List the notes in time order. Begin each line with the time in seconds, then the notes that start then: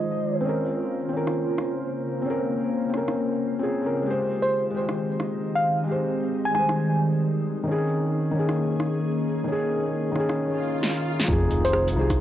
Already playing: D#3 F3 G#3 D#4 F4 G#4 C5 D#5
0.41 C4
0.45 C#3 A#3 C#4
0.49 A#4
1.09 C4
1.13 C#4 A#4
1.27 cross-stick
1.58 cross-stick
2.22 C4
2.26 C#4 A#4
2.89 C4
2.93 C#4 A#4, cross-stick
3.08 cross-stick
3.59 C4 C#4 G#4
3.82 C4 C#4
3.86 A#4
4.02 D#3 G#3 C4 D#4 G4
4.10 C5
4.42 C5
4.71 G#3 G4
4.78 C5
4.89 cross-stick
5.20 cross-stick
5.55 F5
5.83 G#3 G4
5.91 C5
6.45 G#5
6.51 G#3 G#5, cross-stick
6.55 G3
6.59 C5
6.69 cross-stick
7.63 D#3 A#3 C#4 G#4
7.68 C#4 G#4
8.31 D#3 C#4
8.39 G#4
8.49 cross-stick
8.80 cross-stick
9.44 D#3 C#4 D#4
9.52 G#4
10.12 D#3 C#4, cross-stick
10.20 G#4
10.29 cross-stick
10.38 swell
10.83 snare
11.20 snare
11.24 F3 D#4, kick
11.28 F1 D#3 G#3 F4 C5, sub drop
11.32 G#4
11.51 closed hi-hat
11.65 C5, closed hi-hat
11.73 cross-stick
11.88 closed hi-hat
11.92 C2 F3
11.96 D#4 G#4
12.10 kick, cross-stick, closed hi-hat